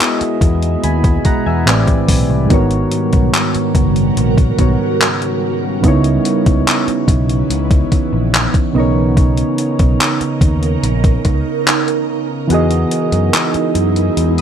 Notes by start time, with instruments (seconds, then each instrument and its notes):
Already playing: ambient pad B2 G#3 E4, synth keys B3 E4 F#4 G#4 D#5
0.01 clap, closed hi-hat
0.21 muted picked electric bass stroke, closed hi-hat
0.41 picked electric bass E2, kick, closed hi-hat
0.62 closed hi-hat
0.84 picked electric bass D#2, synth keys G#5 B5, closed hi-hat
1.04 kick, closed hi-hat
1.25 synth keys F#5 A#5, kick, closed hi-hat
1.46 picked electric bass E2, synth keys E5 G#5
1.65 picked electric bass A1, synth keys A2 E3 C4 G4 B4 D5, ambient pad G3, clap, closed hi-hat
1.88 kick, closed hi-hat
2.08 picked electric bass B1, kick, open hi-hat
2.30 picked electric bass C2
2.47 picked electric bass G#1, synth keys G#2 D#3 B3, ambient pad C#3 F#4 A#4, kick, closed hi-hat
2.51 synth keys F#4 A#4 C#5
2.71 closed hi-hat
2.92 closed hi-hat
3.13 picked electric bass B1, kick, closed hi-hat
3.34 clap, closed hi-hat
3.55 muted picked electric bass stroke, closed hi-hat
3.75 picked electric bass F#1, kick, closed hi-hat
3.96 closed hi-hat
4.17 picked electric bass A#1, closed hi-hat
4.38 kick, closed hi-hat
4.58 picked electric bass B1, synth keys G#2 D#3 B3 F#4 A#4 C#5, kick, closed hi-hat
5.01 clap, closed hi-hat
5.22 closed hi-hat
5.81 picked electric bass C#2, synth keys C#3 B3 D#4, ambient pad E3 B3, kick, closed hi-hat
5.86 synth keys E4 C#5
6.04 closed hi-hat
6.25 closed hi-hat
6.46 picked electric bass C#2, kick, closed hi-hat
6.67 clap, closed hi-hat
6.88 muted picked electric bass stroke, closed hi-hat
7.08 picked electric bass B1, kick, closed hi-hat
7.29 closed hi-hat
7.50 picked electric bass C#2, closed hi-hat
7.71 kick, closed hi-hat
7.92 kick, closed hi-hat
8.13 picked electric bass A#1
8.34 clap, closed hi-hat
8.54 kick, closed hi-hat
8.73 picked electric bass B1, synth keys C#3 B3 D#4, ambient pad C#3 D#4 A#4
8.78 synth keys A#4 C#5
9.17 kick, closed hi-hat
9.37 closed hi-hat
9.58 closed hi-hat
9.79 picked electric bass B1, kick, closed hi-hat
10.00 clap, closed hi-hat
10.21 muted picked electric bass stroke, closed hi-hat
10.41 picked electric bass D#2, kick, closed hi-hat
10.63 closed hi-hat
10.83 picked electric bass A#1, closed hi-hat
11.04 kick, closed hi-hat
11.25 picked electric bass C#2, kick, closed hi-hat
11.67 clap, closed hi-hat
11.88 closed hi-hat
12.47 picked electric bass E2, synth keys E3 B3 F#4, ambient pad G#3 D#4 E4, closed hi-hat
12.52 synth keys G#4 D#5
12.71 closed hi-hat
12.91 closed hi-hat
13.12 picked electric bass F#2, closed hi-hat
13.34 clap, closed hi-hat
13.54 muted picked electric bass stroke, closed hi-hat
13.75 picked electric bass F#2, closed hi-hat
13.96 closed hi-hat
14.17 picked electric bass E2, closed hi-hat
14.38 closed hi-hat